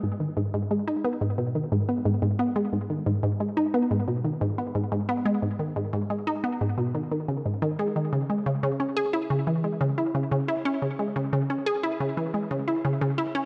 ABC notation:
X:1
M:4/4
L:1/16
Q:1/4=89
K:G#m
V:1 name="Synth arpeggio sound" clef=bass
G,, D, G,, G,, G, D B, G,, B,, D, G,, B, G,, G,, B, G, | G,, D, G,, G,, G, D B, G,, B,, D, G,, B, G,, G,, B, G, | G,, D, G,, G,, G, D B, G,, B,, D, D, C, G,, D, G, D, | C, G, C, C, C G E C, E, G, C, E C, C, E C |
C, G, C, C, C G E C, E, G, C, E C, C, E C |]